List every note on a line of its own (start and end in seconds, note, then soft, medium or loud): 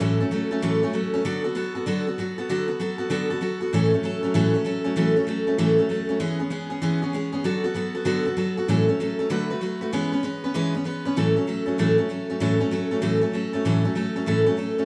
0.00 0.20 A2 medium
0.00 0.21 E3 medium
0.00 0.21 F#3 medium
0.00 0.20 A3 medium
0.00 0.20 C#4 medium
0.00 0.19 A4 medium
0.20 0.30 F#3 medium
0.20 0.31 A3 soft
0.20 0.31 C#4 medium
0.20 0.32 A4 medium
0.31 0.51 F#3 medium
0.31 0.51 A3 medium
0.31 0.51 C#4 medium
0.31 0.50 A4 medium
0.51 0.61 F#3 soft
0.51 0.62 A3 medium
0.51 0.63 C#4 medium
0.51 0.62 A4 medium
0.62 0.82 A2 medium
0.62 0.83 E3 medium
0.62 0.83 F#3 medium
0.62 0.82 A3 medium
0.62 0.82 C#4 medium
0.62 0.82 A4 loud
0.83 0.92 F#3 soft
0.83 0.93 A3 medium
0.83 0.93 C#4 medium
0.83 0.94 A4 medium
0.93 1.13 F#3 medium
0.93 1.14 A3 medium
0.93 1.13 C#4 medium
0.93 1.12 A4 medium
1.14 1.24 F#3 medium
1.14 1.24 A3 medium
1.14 1.25 C#4 medium
1.14 1.24 A4 medium
1.25 1.45 D3 medium
1.25 1.45 F#3 medium
1.25 1.45 B3 medium
1.25 1.43 F#4 medium
1.25 1.43 A4 loud
1.44 1.54 B3 soft
1.44 1.55 F#4 medium
1.44 1.56 A4 medium
1.55 1.75 F#3 medium
1.55 1.75 B3 medium
1.55 1.75 F#4 medium
1.55 1.74 A4 medium
1.75 1.86 B3 soft
1.75 1.86 F#4 medium
1.75 1.86 A4 medium
1.86 2.06 D3 medium
1.86 2.07 F#3 medium
1.86 2.07 B3 medium
1.86 2.07 F#4 medium
1.86 2.06 A4 loud
2.07 2.18 B3 soft
2.07 2.19 F#4 medium
2.07 2.18 A4 medium
2.18 2.38 F#3 medium
2.18 2.38 B3 medium
2.18 2.38 F#4 medium
2.18 2.37 A4 medium
2.38 2.49 B3 medium
2.38 2.49 F#4 medium
2.38 2.49 A4 medium
2.49 2.69 D3 medium
2.49 2.69 F#3 medium
2.49 2.68 B3 medium
2.49 2.67 F#4 medium
2.49 2.67 A4 medium
2.68 2.79 B3 soft
2.68 2.80 F#4 medium
2.68 2.79 A4 medium
2.80 2.99 F#3 medium
2.80 2.99 B3 medium
2.80 2.98 F#4 medium
2.80 2.97 A4 medium
2.98 3.09 B3 soft
2.98 3.10 F#4 soft
2.98 3.10 A4 medium
3.10 3.30 D3 medium
3.10 3.30 F#3 medium
3.10 3.30 B3 medium
3.10 3.30 F#4 loud
3.10 3.29 A4 medium
3.30 3.40 B3 medium
3.30 3.41 F#4 medium
3.30 3.41 A4 medium
3.41 3.61 F#3 medium
3.41 3.61 B3 medium
3.41 3.61 F#4 medium
3.41 3.59 A4 medium
3.61 3.73 B3 medium
3.61 3.73 F#4 medium
3.61 3.72 A4 medium
3.73 3.93 A2 medium
3.73 3.93 E3 medium
3.73 3.93 F#3 medium
3.73 3.93 A3 medium
3.73 3.93 C#4 medium
3.73 3.92 A4 loud
3.93 4.02 F#3 soft
3.93 4.03 A3 medium
3.93 4.04 C#4 medium
3.93 4.04 A4 medium
4.03 4.23 F#3 medium
4.03 4.23 A3 medium
4.03 4.23 C#4 medium
4.03 4.22 A4 medium
4.23 4.34 F#3 medium
4.23 4.34 A3 medium
4.23 4.34 C#4 medium
4.23 4.34 A4 medium
4.34 4.54 A2 medium
4.34 4.54 E3 medium
4.34 4.54 F#3 medium
4.34 4.54 A3 loud
4.34 4.53 C#4 medium
4.34 4.53 A4 loud
4.54 4.63 F#3 medium
4.54 4.64 A3 medium
4.54 4.65 C#4 medium
4.54 4.65 A4 medium
4.64 4.85 F#3 medium
4.64 4.84 A3 medium
4.64 4.84 C#4 medium
4.64 4.83 A4 medium
4.84 4.95 F#3 medium
4.84 4.96 A3 medium
4.84 4.96 C#4 medium
4.84 4.96 A4 medium
4.96 5.16 A2 medium
4.96 5.16 E3 medium
4.96 5.16 F#3 medium
4.96 5.16 A3 medium
4.96 5.16 C#4 medium
4.96 5.15 A4 loud
5.16 5.26 F#3 soft
5.16 5.27 A3 medium
5.16 5.27 C#4 medium
5.16 5.27 A4 medium
5.27 5.47 F#3 medium
5.27 5.47 A3 medium
5.27 5.46 C#4 medium
5.27 5.46 A4 medium
5.47 5.57 F#3 soft
5.47 5.57 A3 medium
5.47 5.58 C#4 medium
5.47 5.58 A4 medium
5.58 5.78 A2 medium
5.58 5.78 E3 medium
5.58 5.78 F#3 medium
5.58 5.78 A3 loud
5.58 5.78 C#4 loud
5.58 5.77 A4 medium
5.78 5.88 F#3 soft
5.78 5.89 A3 medium
5.78 5.89 C#4 medium
5.78 5.89 A4 medium
5.89 6.09 F#3 medium
5.89 6.09 A3 medium
5.89 6.08 C#4 medium
5.89 6.07 A4 medium
6.09 6.19 F#3 soft
6.09 6.20 A3 medium
6.09 6.20 C#4 medium
6.09 6.20 A4 medium
6.20 6.40 E3 medium
6.20 6.40 G#3 medium
6.20 6.40 B3 medium
6.20 6.39 C#4 medium
6.20 6.38 G#4 medium
6.39 6.50 B3 soft
6.39 6.50 C#4 medium
6.39 6.50 G#4 medium
6.50 6.71 G#3 medium
6.50 6.70 B3 medium
6.50 6.70 C#4 medium
6.50 6.69 G#4 medium
6.70 6.81 B3 medium
6.70 6.82 C#4 medium
6.70 6.82 G#4 medium
6.82 7.02 E3 loud
6.82 7.02 G#3 medium
6.82 7.02 B3 loud
6.82 7.02 C#4 loud
6.82 7.01 G#4 medium
7.02 7.13 B3 soft
7.02 7.13 C#4 medium
7.02 7.13 G#4 medium
7.13 7.33 G#3 medium
7.13 7.33 B3 medium
7.13 7.32 C#4 medium
7.13 7.31 G#4 medium
7.32 7.44 B3 medium
7.32 7.44 C#4 medium
7.32 7.44 G#4 medium
7.44 7.64 D3 medium
7.44 7.64 F#3 medium
7.44 7.64 B3 medium
7.44 7.63 F#4 medium
7.44 7.63 A4 medium
7.64 7.74 B3 medium
7.64 7.74 F#4 medium
7.64 7.75 A4 medium
7.74 7.95 F#3 medium
7.74 7.95 B3 medium
7.74 7.94 F#4 medium
7.74 7.93 A4 medium
7.95 8.04 B3 soft
7.95 8.05 F#4 medium
7.95 8.05 A4 medium
8.05 8.25 D3 medium
8.05 8.26 F#3 medium
8.05 8.26 B3 medium
8.05 8.25 F#4 loud
8.05 8.24 A4 loud
8.25 8.36 B3 soft
8.25 8.37 F#4 medium
8.25 8.37 A4 medium
8.37 8.57 F#3 medium
8.37 8.57 B3 medium
8.37 8.57 F#4 medium
8.37 8.56 A4 medium
8.57 8.69 B3 soft
8.57 8.69 F#4 medium
8.57 8.68 A4 medium
8.68 8.88 A2 medium
8.68 8.88 E3 medium
8.68 8.88 F#3 medium
8.68 8.89 A3 medium
8.68 8.88 C#4 medium
8.68 8.87 A4 loud
8.88 8.99 F#3 soft
8.88 8.99 A3 medium
8.88 9.00 C#4 medium
8.88 8.99 A4 medium
9.00 9.19 F#3 medium
9.00 9.19 A3 medium
9.00 9.19 C#4 medium
9.00 9.18 A4 medium
9.19 9.29 F#3 medium
9.19 9.29 A3 medium
9.19 9.30 C#4 medium
9.19 9.30 A4 medium
9.30 9.50 D3 medium
9.30 9.50 F#3 loud
9.30 9.50 A3 loud
9.30 9.50 F#4 medium
9.30 9.49 B4 loud
9.50 9.60 A3 soft
9.50 9.61 F#4 medium
9.50 9.61 B4 medium
9.61 9.81 F#3 medium
9.61 9.81 A3 medium
9.61 9.81 F#4 medium
9.61 9.80 B4 medium
9.81 9.93 A3 medium
9.81 9.93 F#4 medium
9.81 9.92 B4 medium
9.93 10.12 E3 medium
9.93 10.12 G#3 medium
9.93 10.12 B3 medium
9.93 10.12 C#4 medium
9.93 10.11 B4 medium
10.12 10.23 B3 soft
10.12 10.23 C#4 medium
10.12 10.23 B4 medium
10.23 10.43 G#3 medium
10.23 10.43 B3 medium
10.23 10.43 C#4 medium
10.23 10.43 B4 medium
10.44 10.54 B3 soft
10.44 10.54 C#4 medium
10.44 10.54 B4 medium
10.54 10.74 E3 medium
10.54 10.74 G#3 medium
10.54 10.74 B3 medium
10.54 10.75 C#4 loud
10.54 10.73 B4 loud
10.75 10.84 B3 soft
10.75 10.85 C#4 medium
10.75 10.85 B4 medium
10.84 11.05 G#3 medium
10.84 11.05 B3 medium
10.84 11.05 C#4 medium
10.84 11.04 B4 medium
11.05 11.17 B3 medium
11.05 11.16 C#4 medium
11.05 11.16 B4 medium
11.16 11.36 A2 medium
11.16 11.36 E3 medium
11.16 11.36 F#3 medium
11.16 11.36 A3 medium
11.16 11.36 C#4 medium
11.16 11.35 A4 medium
11.36 11.46 F#3 soft
11.36 11.47 A3 soft
11.36 11.47 C#4 medium
11.36 11.47 A4 medium
11.47 11.67 F#3 medium
11.47 11.66 A3 medium
11.47 11.65 C#4 medium
11.47 11.65 A4 medium
11.66 11.78 F#3 soft
11.66 11.78 A3 soft
11.66 11.78 C#4 medium
11.66 11.78 A4 medium
11.78 11.98 A2 medium
11.78 11.98 E3 medium
11.78 11.98 F#3 medium
11.78 11.98 A3 medium
11.78 11.97 C#4 medium
11.78 11.97 A4 medium
11.98 12.08 F#3 soft
11.98 12.09 A3 soft
11.98 12.09 C#4 medium
11.98 12.09 A4 medium
12.09 12.29 F#3 medium
12.09 12.29 C#4 medium
12.09 12.28 A4 medium
12.30 12.40 F#3 soft
12.30 12.40 A3 medium
12.30 12.40 C#4 soft
12.30 12.40 A4 medium
12.40 12.60 A2 medium
12.40 12.60 E3 medium
12.40 12.60 F#3 medium
12.40 12.60 A3 medium
12.40 12.60 C#4 loud
12.40 12.59 A4 medium
12.60 12.70 F#3 soft
12.60 12.71 A3 soft
12.60 12.71 C#4 medium
12.60 12.71 A4 medium
12.71 12.91 F#3 medium
12.71 12.91 A3 medium
12.71 12.91 C#4 medium
12.71 12.90 A4 medium
12.91 13.01 F#3 soft
12.91 13.01 A3 medium
12.91 13.02 C#4 soft
12.91 13.02 A4 medium
13.02 13.22 A2 medium
13.02 13.22 E3 medium
13.02 13.22 F#3 medium
13.02 13.22 A3 medium
13.02 13.21 C#4 medium
13.02 13.20 A4 medium
13.21 13.32 F#3 soft
13.21 13.32 A3 medium
13.21 13.33 C#4 medium
13.21 13.33 A4 medium
13.33 13.53 F#3 medium
13.33 13.53 A3 medium
13.33 13.53 C#4 medium
13.33 13.52 A4 medium
13.53 13.65 F#3 soft
13.53 13.64 A3 medium
13.53 13.65 C#4 medium
13.53 13.64 A4 medium
13.65 13.85 A2 medium
13.65 13.85 E3 medium
13.65 13.85 F#3 medium
13.65 13.84 A3 medium
13.65 13.84 C#4 medium
13.65 13.83 A4 medium
13.84 13.94 F#3 soft
13.84 13.95 A3 soft
13.84 13.95 C#4 medium
13.84 13.96 A4 medium
13.95 14.15 F#3 medium
13.95 14.16 A3 medium
13.95 14.15 C#4 medium
13.95 14.15 A4 medium
14.16 14.26 F#3 medium
14.16 14.26 A3 soft
14.16 14.27 C#4 medium
14.16 14.27 A4 medium
14.26 14.46 A2 medium
14.26 14.47 E3 medium
14.26 14.47 F#3 medium
14.26 14.46 A3 medium
14.26 14.45 C#4 loud
14.26 14.45 A4 loud
14.46 14.56 F#3 soft
14.46 14.56 A3 medium
14.46 14.57 C#4 medium
14.46 14.58 A4 medium
14.57 14.77 F#3 medium
14.57 14.78 A3 medium
14.57 14.77 C#4 medium
14.57 14.77 A4 medium
14.78 14.85 F#3 soft
14.78 14.85 A3 medium
14.78 14.85 C#4 medium
14.78 14.85 A4 medium